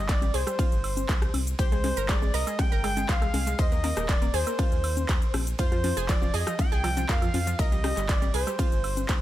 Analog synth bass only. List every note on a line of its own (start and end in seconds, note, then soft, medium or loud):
0.00 0.30 G1 loud
0.34 0.45 C2 loud
0.72 1.05 G1 loud
1.09 1.30 C2 medium
1.34 1.55 C2 loud
1.59 1.93 C2 loud
1.97 2.30 G1 loud
2.34 2.45 C2 medium
2.72 3.05 G1 loud
3.09 3.30 C2 medium
3.34 3.54 C2 loud
3.59 3.93 D#2 loud
3.97 4.30 D#1 loud
4.34 4.45 D#2 medium
4.72 5.05 D#2 loud
5.09 5.20 D#2 medium
5.34 5.55 A#1 loud
5.59 5.93 F2 loud
5.97 6.30 F1 loud
6.34 6.45 F2 medium
6.72 7.05 C2 loud
7.09 7.30 F2 medium
7.34 7.55 F2 loud
7.59 7.93 C2 loud
7.97 8.30 G1 loud
8.34 8.45 C2 medium
8.72 9.05 G1 loud
9.09 9.21 C2 loud